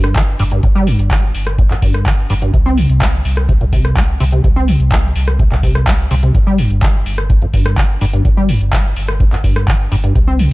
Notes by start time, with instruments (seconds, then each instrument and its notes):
Already playing: sub bass G1, acid bass G2
0.04 cross-stick, closed hi-hat
0.15 sub bass G1, acid bass F3, kick, clap, closed hi-hat
0.39 sub bass G1, acid bass G2, open hi-hat
0.51 acid bass G2, closed hi-hat
0.63 sub bass G1, acid bass G2, kick, closed hi-hat
0.75 acid bass G3
0.87 acid bass G2, open hi-hat
0.99 sub bass G1, closed hi-hat
1.11 acid bass F3, kick, clap, closed hi-hat
1.35 sub bass G1, open hi-hat
1.47 cross-stick, closed hi-hat
1.58 acid bass G2, kick, closed hi-hat
1.70 sub bass G1, acid bass F2, clap, closed hi-hat
1.82 acid bass G2, kick, open hi-hat
1.94 cross-stick, closed hi-hat
2.06 sub bass G1, acid bass F3, kick, clap, closed hi-hat
2.30 sub bass G1, acid bass G2, open hi-hat
2.42 acid bass G2, closed hi-hat
2.54 sub bass C2, acid bass C3, kick, closed hi-hat
2.66 acid bass C4
2.77 acid bass C3, open hi-hat
2.89 sub bass C2, closed hi-hat
3.01 acid bass A#3, kick, clap, closed hi-hat
3.25 sub bass C2, open hi-hat
3.37 cross-stick, closed hi-hat
3.49 acid bass C3, kick, closed hi-hat
3.61 sub bass C2, acid bass A#2, closed hi-hat
3.73 acid bass C3, kick, open hi-hat
3.85 cross-stick, closed hi-hat
3.96 sub bass C2, acid bass A#3, kick, clap, closed hi-hat
4.20 sub bass C2, acid bass C3, open hi-hat
4.32 acid bass C3, closed hi-hat
4.44 sub bass C2, acid bass C3, kick, closed hi-hat
4.56 acid bass C4
4.68 acid bass C3, open hi-hat
4.80 sub bass C2, closed hi-hat
4.92 acid bass A#3, kick, clap, closed hi-hat
5.16 sub bass C2, open hi-hat
5.28 cross-stick, closed hi-hat
5.39 acid bass C3, kick, closed hi-hat
5.51 sub bass C2, acid bass A#2, clap, closed hi-hat
5.63 acid bass C3, kick, open hi-hat
5.75 cross-stick, closed hi-hat
5.87 sub bass C2, acid bass A#3, kick, clap, closed hi-hat
6.11 sub bass C2, acid bass C3, open hi-hat
6.23 acid bass C3, closed hi-hat
6.34 sub bass G1, acid bass G2, kick, closed hi-hat
6.47 acid bass G3
6.58 acid bass G2, open hi-hat
6.70 sub bass G1, closed hi-hat
6.82 acid bass F3, kick, clap, closed hi-hat
7.06 sub bass G1, open hi-hat
7.18 cross-stick, closed hi-hat
7.30 acid bass G2, kick, closed hi-hat
7.42 sub bass G1, acid bass F2, closed hi-hat
7.54 acid bass G2, kick, open hi-hat
7.66 cross-stick, closed hi-hat
7.77 sub bass G1, acid bass F3, kick, clap, closed hi-hat
8.01 sub bass G1, acid bass G2, open hi-hat
8.13 acid bass G2, closed hi-hat
8.25 sub bass G1, acid bass G2, kick, closed hi-hat
8.37 acid bass G3
8.49 acid bass G2, open hi-hat
8.61 sub bass G1, closed hi-hat
8.73 acid bass F3, kick, clap, closed hi-hat
8.96 sub bass G1, open hi-hat
9.08 cross-stick, closed hi-hat
9.20 acid bass G2, kick, closed hi-hat
9.32 sub bass G1, acid bass F2, clap, closed hi-hat
9.44 acid bass G2, kick, open hi-hat
9.56 cross-stick, closed hi-hat
9.68 sub bass G1, acid bass F3, kick, clap, closed hi-hat
9.91 sub bass G1, acid bass G2, open hi-hat
10.04 acid bass G2, closed hi-hat
10.15 sub bass C2, acid bass C3, kick, closed hi-hat
10.28 acid bass C4
10.39 acid bass C3, open hi-hat